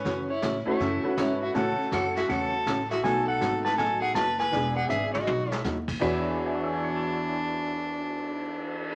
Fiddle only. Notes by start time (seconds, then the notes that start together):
Already playing: C#4
0.30 E4
0.68 E4
1.18 E4
1.42 F#4
1.56 A4
1.93 A4
2.17 F#4
2.30 A4
2.91 F#4
3.05 A4
3.27 A4
3.64 B4
3.77 A4
4.02 G#4
4.15 B4
4.39 B4
4.77 G#4
4.90 G#4
5.14 F#4
5.51 E4
6.02 D4